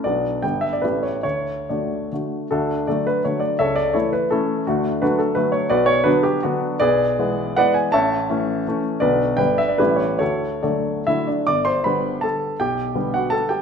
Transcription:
<<
  \new Staff \with { instrumentName = "Grand piano" } { \time 3/4 \key d \major \tempo 4 = 161 d''4 g''8 e''16 d''16 b'8 cis''8 | cis''4 d''4 r4 | <d' fis' a'>4 <fis' a' d''>8 b'8 cis''8 d''8 | <a' cis'' e''>8 d''8 <e' a' cis''>8 b'8 <cis' e' a'>4 |
<a d' fis'>4 <d' fis' b'>8 a'8 b'8 cis''8 | <fis' b' d''>8 cis''8 <d' fis' b'>8 g'8 <b d' fis'>4 | <gis' b' d''>2 <b' d'' fis''>8 gis''8 | <cis'' e'' a''>2~ <cis'' e'' a''>8 r8 |
<fis' b' d''>4 <b' d'' g''>8 e''16 d''16 <e' g' b'>8 cis''8 | <fis' a' cis''>4 <fis' a' d''>4 <e' e''>8 <d' d''>8 | \key g \major <d'' d'''>8 <c'' c'''>8 <b' b''>4 <a' a''>4 | <g' g''>4. <fis' fis''>8 <a' a''>8 <g' g''>8 | }
  \new Staff \with { instrumentName = "Grand piano" } { \clef bass \time 3/4 \key d \major <b,, fis b d'>4 <g,, g b d'>4 <a,, e a g'>4 | d,4 <d a fis'>4 <d a fis'>4 | d,4 <d fis a>4 <d fis a>4 | cis,4 <e a>4 <e a>4 |
d,4 <d fis a>4 <d fis a>4 | b,,4 <d fis b>4 <d fis>4 | b,,4 <e gis b>4 <e gis b>4 | a,,4 <e a cis'>4 <e a cis'>4 |
<b,, d fis b>4 <g,, d g b>4 <a,, e g a>4 | d,4 <d fis a>4 <d fis a>4 | \key g \major g,,4 <d g b>2 | b,,4 <d g b>2 | }
>>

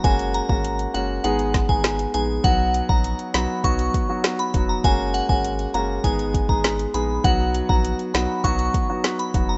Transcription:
<<
  \new Staff \with { instrumentName = "Synth bell" } { \time 4/4 \key b \lydian \tempo 4 = 100 gis''16 r16 ais''16 ais''16 r8 fis''16 r16 fis''16 r8 gis''16 r8 gis''16 r16 | fis''8 r16 ais''16 r8 b''16 r16 cis'''8. r8 b''16 r16 ais''16 | gis''16 r16 fis''16 gis''16 r8 ais''16 r16 gis''16 r8 ais''16 r8 b''16 r16 | fis''8 r16 ais''16 r8 b''16 r16 cis'''8. r8 b''16 r16 ais''16 | }
  \new Staff \with { instrumentName = "Grand piano" } { \time 4/4 \key b \lydian <gis ais cis' fis'>8. <gis ais cis' fis'>8. <gis ais cis' fis'>8 <gis b dis' gis'>8. <gis b dis' gis'>8. <gis b dis' gis'>8 | <fis b dis' fis'>8. <fis b dis' fis'>8. <fis b dis' fis'>8 <fis b dis' fis'>8. <fis b dis' fis'>8. <fis b dis' fis'>8 | <gis ais cis' fis'>8. <gis ais cis' fis'>8. <gis ais cis' fis'>8 <gis b dis' gis'>8. <gis b dis' gis'>8. <gis b dis' gis'>8 | <fis b dis' fis'>8. <fis b dis' fis'>8. <fis b dis' fis'>8 <fis b dis' fis'>8. <fis b dis' fis'>8. <fis b dis' fis'>8 | }
  \new Staff \with { instrumentName = "Sub bass" } { \clef bass \time 4/4 \key b \lydian fis,,8. gis,,8. fis,,8 gis,,8. gis,,8. ais,,8 | b,,8. ais,,8 r16 b,,16 r16 b,,8 r4 eis,,8 | fis,,8. gis,,8. fis,,8 gis,,8. gis,,8. ais,,8 | b,,8. ais,,8 r16 b,,16 r16 b,,8 r4 eis,,8 | }
  \new DrumStaff \with { instrumentName = "Drums" } \drummode { \time 4/4 <hh bd>16 hh16 hh16 bd16 hh16 hh16 hh8 hh16 hh16 <hh bd sn>16 bd16 <hh ss sn>16 hh16 hh8 | <hh bd>8 hh16 bd16 hh16 hh16 <hh sn>8 <hh bd>16 hh16 <hh bd>8 <hh ss sn>16 hh16 <hh bd>8 | <hh bd>8 hh16 bd16 hh16 hh16 hh8 <hh bd>16 hh16 <hh bd>16 bd16 <hh ss sn>16 hh16 hh8 | <hh bd>8 hh16 bd16 hh16 hh16 <hh sn>8 <hh bd>16 hh16 <hh bd>8 <hh ss sn>16 hh16 <hh bd>8 | }
>>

